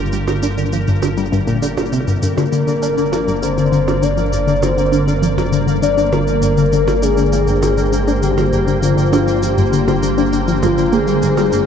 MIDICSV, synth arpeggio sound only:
0, 0, Header, 1, 2, 480
1, 0, Start_track
1, 0, Tempo, 600000
1, 1780, Time_signature, 4, 2, 24, 8
1, 9329, End_track
2, 0, Start_track
2, 0, Title_t, "Synth arpeggio sound"
2, 0, Program_c, 0, 84
2, 102, Note_on_c, 0, 55, 73
2, 156, Note_off_c, 0, 55, 0
2, 221, Note_on_c, 0, 50, 73
2, 275, Note_off_c, 0, 50, 0
2, 341, Note_on_c, 0, 62, 80
2, 373, Note_off_c, 0, 62, 0
2, 461, Note_on_c, 0, 50, 76
2, 515, Note_off_c, 0, 50, 0
2, 583, Note_on_c, 0, 53, 70
2, 614, Note_off_c, 0, 53, 0
2, 703, Note_on_c, 0, 43, 71
2, 734, Note_off_c, 0, 43, 0
2, 821, Note_on_c, 0, 50, 78
2, 875, Note_off_c, 0, 50, 0
2, 940, Note_on_c, 0, 55, 76
2, 995, Note_off_c, 0, 55, 0
2, 1059, Note_on_c, 0, 43, 97
2, 1114, Note_off_c, 0, 43, 0
2, 1179, Note_on_c, 0, 46, 74
2, 1262, Note_off_c, 0, 46, 0
2, 1300, Note_on_c, 0, 50, 96
2, 1333, Note_off_c, 0, 50, 0
2, 1419, Note_on_c, 0, 50, 75
2, 1452, Note_off_c, 0, 50, 0
2, 1540, Note_on_c, 0, 48, 72
2, 1595, Note_off_c, 0, 48, 0
2, 1660, Note_on_c, 0, 43, 72
2, 1715, Note_off_c, 0, 43, 0
2, 1781, Note_on_c, 0, 43, 80
2, 1813, Note_off_c, 0, 43, 0
2, 1899, Note_on_c, 0, 50, 73
2, 1954, Note_off_c, 0, 50, 0
2, 2020, Note_on_c, 0, 50, 75
2, 2102, Note_off_c, 0, 50, 0
2, 2138, Note_on_c, 0, 50, 72
2, 2194, Note_off_c, 0, 50, 0
2, 2261, Note_on_c, 0, 62, 79
2, 2293, Note_off_c, 0, 62, 0
2, 2379, Note_on_c, 0, 50, 77
2, 2434, Note_off_c, 0, 50, 0
2, 2498, Note_on_c, 0, 53, 73
2, 2532, Note_off_c, 0, 53, 0
2, 2620, Note_on_c, 0, 43, 74
2, 2653, Note_off_c, 0, 43, 0
2, 2738, Note_on_c, 0, 50, 81
2, 2794, Note_off_c, 0, 50, 0
2, 2862, Note_on_c, 0, 50, 74
2, 2943, Note_off_c, 0, 50, 0
2, 2978, Note_on_c, 0, 50, 75
2, 3034, Note_off_c, 0, 50, 0
2, 3100, Note_on_c, 0, 62, 73
2, 3133, Note_off_c, 0, 62, 0
2, 3220, Note_on_c, 0, 50, 79
2, 3275, Note_off_c, 0, 50, 0
2, 3338, Note_on_c, 0, 53, 74
2, 3372, Note_off_c, 0, 53, 0
2, 3458, Note_on_c, 0, 43, 73
2, 3492, Note_off_c, 0, 43, 0
2, 3579, Note_on_c, 0, 50, 73
2, 3634, Note_off_c, 0, 50, 0
2, 3700, Note_on_c, 0, 50, 80
2, 3782, Note_off_c, 0, 50, 0
2, 3818, Note_on_c, 0, 50, 75
2, 3874, Note_off_c, 0, 50, 0
2, 3937, Note_on_c, 0, 62, 74
2, 3971, Note_off_c, 0, 62, 0
2, 4060, Note_on_c, 0, 50, 74
2, 4114, Note_off_c, 0, 50, 0
2, 4177, Note_on_c, 0, 53, 79
2, 4212, Note_off_c, 0, 53, 0
2, 4298, Note_on_c, 0, 43, 76
2, 4332, Note_off_c, 0, 43, 0
2, 4417, Note_on_c, 0, 50, 72
2, 4473, Note_off_c, 0, 50, 0
2, 4535, Note_on_c, 0, 50, 74
2, 4620, Note_off_c, 0, 50, 0
2, 4657, Note_on_c, 0, 50, 79
2, 4713, Note_off_c, 0, 50, 0
2, 4779, Note_on_c, 0, 62, 72
2, 4812, Note_off_c, 0, 62, 0
2, 4897, Note_on_c, 0, 50, 74
2, 4953, Note_off_c, 0, 50, 0
2, 5019, Note_on_c, 0, 53, 75
2, 5052, Note_off_c, 0, 53, 0
2, 5140, Note_on_c, 0, 43, 79
2, 5173, Note_off_c, 0, 43, 0
2, 5260, Note_on_c, 0, 50, 73
2, 5315, Note_off_c, 0, 50, 0
2, 5382, Note_on_c, 0, 50, 72
2, 5463, Note_off_c, 0, 50, 0
2, 5499, Note_on_c, 0, 50, 72
2, 5554, Note_off_c, 0, 50, 0
2, 5620, Note_on_c, 0, 62, 80
2, 5653, Note_off_c, 0, 62, 0
2, 5738, Note_on_c, 0, 50, 75
2, 5794, Note_off_c, 0, 50, 0
2, 5860, Note_on_c, 0, 53, 75
2, 5893, Note_off_c, 0, 53, 0
2, 5978, Note_on_c, 0, 43, 71
2, 6012, Note_off_c, 0, 43, 0
2, 6101, Note_on_c, 0, 50, 80
2, 6155, Note_off_c, 0, 50, 0
2, 6218, Note_on_c, 0, 50, 75
2, 6301, Note_off_c, 0, 50, 0
2, 6339, Note_on_c, 0, 50, 73
2, 6394, Note_off_c, 0, 50, 0
2, 6461, Note_on_c, 0, 62, 76
2, 6493, Note_off_c, 0, 62, 0
2, 6581, Note_on_c, 0, 50, 78
2, 6635, Note_off_c, 0, 50, 0
2, 6700, Note_on_c, 0, 53, 75
2, 6733, Note_off_c, 0, 53, 0
2, 6820, Note_on_c, 0, 43, 73
2, 6853, Note_off_c, 0, 43, 0
2, 6940, Note_on_c, 0, 50, 72
2, 6995, Note_off_c, 0, 50, 0
2, 7057, Note_on_c, 0, 50, 80
2, 7141, Note_off_c, 0, 50, 0
2, 7177, Note_on_c, 0, 50, 72
2, 7233, Note_off_c, 0, 50, 0
2, 7300, Note_on_c, 0, 62, 76
2, 7333, Note_off_c, 0, 62, 0
2, 7419, Note_on_c, 0, 50, 74
2, 7474, Note_off_c, 0, 50, 0
2, 7541, Note_on_c, 0, 53, 80
2, 7573, Note_off_c, 0, 53, 0
2, 7661, Note_on_c, 0, 43, 74
2, 7693, Note_off_c, 0, 43, 0
2, 7783, Note_on_c, 0, 50, 76
2, 7836, Note_off_c, 0, 50, 0
2, 7901, Note_on_c, 0, 50, 72
2, 7983, Note_off_c, 0, 50, 0
2, 8021, Note_on_c, 0, 50, 81
2, 8075, Note_off_c, 0, 50, 0
2, 8141, Note_on_c, 0, 62, 75
2, 8173, Note_off_c, 0, 62, 0
2, 8264, Note_on_c, 0, 50, 72
2, 8317, Note_off_c, 0, 50, 0
2, 8382, Note_on_c, 0, 53, 76
2, 8414, Note_off_c, 0, 53, 0
2, 8502, Note_on_c, 0, 43, 79
2, 8534, Note_off_c, 0, 43, 0
2, 8622, Note_on_c, 0, 50, 75
2, 8676, Note_off_c, 0, 50, 0
2, 8740, Note_on_c, 0, 58, 73
2, 8795, Note_off_c, 0, 58, 0
2, 8862, Note_on_c, 0, 55, 73
2, 8916, Note_off_c, 0, 55, 0
2, 8981, Note_on_c, 0, 43, 94
2, 9036, Note_off_c, 0, 43, 0
2, 9101, Note_on_c, 0, 55, 73
2, 9183, Note_off_c, 0, 55, 0
2, 9220, Note_on_c, 0, 43, 73
2, 9275, Note_off_c, 0, 43, 0
2, 9329, End_track
0, 0, End_of_file